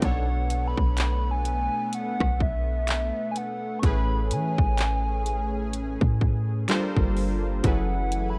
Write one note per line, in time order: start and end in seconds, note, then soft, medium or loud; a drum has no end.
0.00 0.75 B1 loud
0.00 3.79 B2 medium
0.00 6.65 A3 medium
0.00 3.79 B3 medium
0.00 0.28 C4 medium
0.00 3.80 D4 medium
0.00 0.28 D#4 medium
0.00 kick loud
0.00 closed hi-hat medium
0.04 3.80 A4 medium
0.04 3.81 C#5 medium
0.04 0.69 F#5 loud
0.50 closed hi-hat medium
0.67 1.32 B5 loud
0.78 1.69 B1 loud
0.78 kick loud
0.97 clap loud
0.97 closed hi-hat medium
1.31 1.94 G#5 loud
1.45 closed hi-hat medium
1.93 2.44 F#5 loud
1.93 closed hi-hat medium
2.20 3.12 B1 loud
2.20 kick loud
2.20 cross-stick loud
2.40 3.31 E5 loud
2.40 kick medium
2.88 clap loud
2.88 closed hi-hat medium
3.31 3.39 G#5 medium
3.36 3.81 F#5 loud
3.36 closed hi-hat medium
3.79 6.64 A2 medium
3.79 6.65 A3 medium
3.79 6.66 C#4 medium
3.79 6.66 G#4 medium
3.79 3.87 C#6 medium
3.79 kick loud
3.79 closed hi-hat medium
3.83 4.33 A1 loud
3.83 6.65 C#4 medium
3.83 6.66 G#4 medium
3.83 6.66 B4 medium
3.83 4.35 B5 loud
4.31 4.57 E3 medium
4.31 6.22 G#5 loud
4.31 closed hi-hat medium
4.58 5.97 A1 loud
4.58 kick loud
4.78 clap loud
4.78 closed hi-hat medium
5.26 closed hi-hat medium
5.73 closed hi-hat medium
6.01 6.66 A2 medium
6.01 kick loud
6.21 kick medium
6.69 7.64 G3 medium
6.69 7.63 G3 medium
6.69 7.63 A#3 medium
6.69 7.64 D4 medium
6.69 7.63 F4 medium
6.69 7.64 F4 medium
6.69 7.65 A4 medium
6.69 7.65 A#4 medium
6.69 7.65 C5 medium
6.69 clap loud
6.69 closed hi-hat medium
6.96 7.62 G1 loud
6.96 kick loud
7.17 open hi-hat medium
7.63 8.36 F#1 loud
7.63 8.39 E3 medium
7.63 8.39 F#3 medium
7.63 8.39 A3 medium
7.63 8.39 C#4 medium
7.63 8.39 E4 medium
7.63 8.39 G#4 medium
7.63 8.39 A4 medium
7.63 8.39 B4 medium
7.63 8.31 F#5 loud
7.63 8.39 G#5 medium
7.63 kick loud
7.63 closed hi-hat medium
8.12 closed hi-hat medium
8.30 8.39 B5 loud